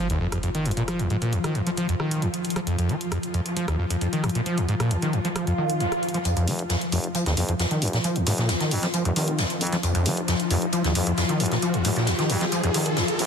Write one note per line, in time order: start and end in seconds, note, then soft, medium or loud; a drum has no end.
0.00 6.24 F3 medium
0.00 6.24 F4 medium
0.00 impact medium
0.10 0.19 D#2 loud
0.10 snare medium
0.10 closed hi-hat medium
0.21 0.27 F2 medium
0.21 closed hi-hat medium
0.32 0.38 F2 medium
0.32 cross-stick medium
0.32 closed hi-hat medium
0.42 0.49 F2 medium
0.42 closed hi-hat medium
0.55 0.67 D#3 medium
0.55 closed hi-hat medium
0.66 0.72 F2 loud
0.66 closed hi-hat soft
0.71 closed hi-hat medium
0.77 0.83 A#2 medium
0.77 snare medium
0.77 closed hi-hat medium
0.88 1.01 F3 medium
0.88 cross-stick medium
0.88 closed hi-hat medium
0.99 1.08 D#2 medium
0.99 closed hi-hat medium
1.10 1.17 G#2 loud
1.10 closed hi-hat soft
1.22 1.34 A#2 loud
1.22 snare soft
1.22 closed hi-hat medium
1.33 1.39 D#2 loud
1.33 closed hi-hat medium
1.44 1.57 D#3 medium
1.44 cross-stick medium
1.44 snare soft
1.44 closed hi-hat medium
1.55 1.61 F2 loud
1.55 closed hi-hat soft
1.66 1.70 F3 loud
1.66 snare soft
1.66 closed hi-hat medium
1.77 1.87 F3 medium
1.77 closed hi-hat medium
1.89 1.95 F2 loud
1.89 closed hi-hat medium
2.00 2.24 D#3 medium
2.00 cross-stick medium
2.11 closed hi-hat medium
2.22 2.29 D#2 loud
2.22 closed hi-hat medium
2.34 closed hi-hat soft
2.34 closed hi-hat medium
2.45 closed hi-hat soft
2.45 closed hi-hat medium
2.50 closed hi-hat medium
2.56 2.60 F3 loud
2.56 cross-stick medium
2.56 snare soft
2.56 closed hi-hat medium
2.67 2.77 F2 medium
2.67 closed hi-hat medium
2.77 2.91 F2 loud
2.77 closed hi-hat soft
2.77 closed hi-hat medium
2.89 2.96 F3 medium
2.89 closed hi-hat medium
2.89 closed hi-hat soft
3.01 closed hi-hat medium
3.12 3.18 F2 medium
3.12 cross-stick medium
3.12 closed hi-hat medium
3.23 closed hi-hat medium
3.34 3.40 F2 loud
3.34 closed hi-hat soft
3.34 closed hi-hat medium
3.46 snare soft
3.46 closed hi-hat medium
3.56 3.66 F3 medium
3.56 closed hi-hat medium
3.68 3.77 D#2 loud
3.68 cross-stick medium
3.68 snare medium
3.68 closed hi-hat medium
3.79 3.85 F2 medium
3.79 closed hi-hat medium
3.90 3.96 F2 medium
3.90 closed hi-hat medium
4.01 4.08 F2 medium
4.01 closed hi-hat medium
4.13 4.25 D#3 medium
4.13 closed hi-hat medium
4.24 4.30 F2 loud
4.24 cross-stick medium
4.24 closed hi-hat soft
4.29 closed hi-hat medium
4.35 4.41 A#2 medium
4.35 snare medium
4.35 closed hi-hat medium
4.45 4.59 F3 medium
4.45 closed hi-hat medium
4.58 4.67 D#2 medium
4.58 closed hi-hat medium
4.69 4.75 G#2 loud
4.69 closed hi-hat soft
4.69 closed hi-hat medium
4.80 4.92 A#2 loud
4.80 cross-stick medium
4.80 snare soft
4.80 closed hi-hat soft
4.91 4.97 D#2 loud
4.91 closed hi-hat medium
5.02 5.15 D#3 medium
5.02 snare soft
5.02 closed hi-hat medium
5.13 5.20 F2 loud
5.13 closed hi-hat soft
5.13 closed hi-hat medium
5.24 5.28 F3 loud
5.24 snare soft
5.24 closed hi-hat medium
5.35 5.45 F3 medium
5.35 cross-stick medium
5.35 closed hi-hat medium
5.35 swell medium
5.47 5.53 F2 loud
5.47 closed hi-hat medium
5.58 5.82 D#3 medium
5.58 closed hi-hat medium
5.70 closed hi-hat medium
5.80 5.87 D#2 loud
5.80 snare medium
5.80 closed hi-hat medium
5.86 snare medium
5.86 closed hi-hat medium
5.92 cross-stick medium
5.92 snare medium
5.92 closed hi-hat medium
5.97 snare medium
5.97 closed hi-hat medium
6.03 closed hi-hat medium
6.03 closed hi-hat soft
6.09 closed hi-hat medium
6.14 6.18 F3 loud
6.14 snare soft
6.14 closed hi-hat medium
6.25 6.35 F2 medium
6.25 13.27 F3 medium
6.25 13.27 F4 medium
6.25 closed hi-hat medium
6.25 riser medium
6.37 6.49 F2 loud
6.37 closed hi-hat soft
6.37 closed hi-hat medium
6.48 6.63 F1 loud
6.48 6.54 F3 medium
6.48 closed hi-hat medium
6.48 open hi-hat loud
6.59 closed hi-hat medium
6.70 6.76 F2 medium
6.70 snare loud
6.70 closed hi-hat medium
6.81 closed hi-hat medium
6.92 7.07 F1 loud
6.92 6.99 F2 loud
6.92 closed hi-hat medium
6.92 open hi-hat medium
7.04 closed hi-hat medium
7.15 7.24 F3 medium
7.15 closed hi-hat medium
7.26 7.33 F#1 loud
7.26 7.35 D#2 loud
7.26 snare medium
7.26 closed hi-hat medium
7.37 7.52 F#1 loud
7.37 7.44 F2 medium
7.37 closed hi-hat medium
7.37 open hi-hat loud
7.49 7.55 F2 medium
7.49 closed hi-hat medium
7.60 7.66 F2 medium
7.60 snare loud
7.60 closed hi-hat medium
7.71 7.83 D#3 medium
7.71 closed hi-hat medium
7.82 7.97 F1 medium
7.82 7.88 F2 loud
7.82 closed hi-hat medium
7.82 open hi-hat medium
7.88 closed hi-hat medium
7.93 7.99 A#2 medium
7.93 snare medium
7.93 closed hi-hat medium
8.04 8.17 F3 medium
8.04 closed hi-hat medium
8.16 8.25 D#2 medium
8.16 closed hi-hat medium
8.27 8.42 F1 loud
8.27 8.33 G#2 loud
8.27 closed hi-hat medium
8.27 open hi-hat loud
8.38 8.51 A#2 loud
8.38 snare soft
8.38 closed hi-hat medium
8.49 8.55 D#2 loud
8.49 snare loud
8.49 closed hi-hat medium
8.60 8.73 D#3 medium
8.60 snare soft
8.60 closed hi-hat medium
8.71 8.87 F2 medium
8.71 8.78 F2 loud
8.71 closed hi-hat medium
8.71 open hi-hat loud
8.83 8.87 F3 loud
8.83 snare soft
8.83 closed hi-hat medium
8.93 9.03 F3 medium
8.93 closed hi-hat medium
9.05 9.13 F1 medium
9.05 9.11 F2 loud
9.05 closed hi-hat medium
9.16 9.31 F1 medium
9.16 9.40 D#3 medium
9.16 closed hi-hat medium
9.16 open hi-hat loud
9.28 closed hi-hat medium
9.38 9.45 D#2 loud
9.38 snare loud
9.38 closed hi-hat medium
9.50 closed hi-hat soft
9.50 closed hi-hat medium
9.61 9.76 F2 medium
9.61 closed hi-hat medium
9.61 open hi-hat loud
9.67 closed hi-hat medium
9.72 9.76 F3 loud
9.72 snare soft
9.72 closed hi-hat medium
9.83 9.93 F2 medium
9.83 closed hi-hat medium
9.95 10.07 F2 loud
9.95 closed hi-hat medium
9.95 closed hi-hat soft
10.06 10.21 F1 loud
10.06 10.12 F3 medium
10.06 closed hi-hat medium
10.06 open hi-hat loud
10.17 closed hi-hat medium
10.28 10.34 F2 medium
10.28 snare loud
10.28 closed hi-hat medium
10.40 closed hi-hat medium
10.50 10.66 F1 loud
10.50 10.57 F2 loud
10.50 closed hi-hat medium
10.50 open hi-hat loud
10.62 closed hi-hat medium
10.72 10.82 F3 medium
10.72 closed hi-hat medium
10.84 10.92 F#1 loud
10.84 10.93 D#2 loud
10.84 snare medium
10.84 closed hi-hat medium
10.95 11.10 F#1 loud
10.95 11.02 F2 medium
10.95 closed hi-hat medium
10.95 open hi-hat loud
11.07 11.13 F2 medium
11.07 closed hi-hat medium
11.18 11.24 F2 medium
11.18 snare loud
11.18 closed hi-hat medium
11.29 11.42 D#3 medium
11.29 closed hi-hat medium
11.40 11.55 F1 medium
11.40 11.46 F2 loud
11.40 closed hi-hat medium
11.40 open hi-hat loud
11.46 closed hi-hat medium
11.52 11.58 A#2 medium
11.52 snare medium
11.52 closed hi-hat medium
11.62 11.76 F3 medium
11.62 closed hi-hat medium
11.74 11.83 D#2 medium
11.74 closed hi-hat medium
11.85 12.00 F1 loud
11.85 11.91 G#2 loud
11.85 closed hi-hat medium
11.85 open hi-hat loud
11.96 12.09 A#2 loud
11.96 snare soft
11.96 closed hi-hat medium
12.07 12.14 D#2 loud
12.07 snare loud
12.07 closed hi-hat medium
12.19 12.31 D#3 medium
12.19 snare soft
12.19 closed hi-hat soft
12.30 12.45 F2 medium
12.30 12.36 F2 loud
12.30 closed hi-hat medium
12.30 open hi-hat loud
12.41 12.45 F3 loud
12.41 snare soft
12.41 closed hi-hat medium
12.52 12.62 F3 medium
12.52 closed hi-hat medium
12.64 12.71 F1 medium
12.64 12.70 F2 loud
12.64 closed hi-hat medium
12.74 12.90 F1 medium
12.74 12.98 D#3 medium
12.74 closed hi-hat medium
12.74 open hi-hat loud
12.86 closed hi-hat medium
12.97 13.03 D#2 loud
12.97 snare loud
12.97 closed hi-hat medium
13.08 closed hi-hat soft
13.08 closed hi-hat medium
13.19 13.27 A#1 loud
13.19 closed hi-hat medium
13.19 open hi-hat medium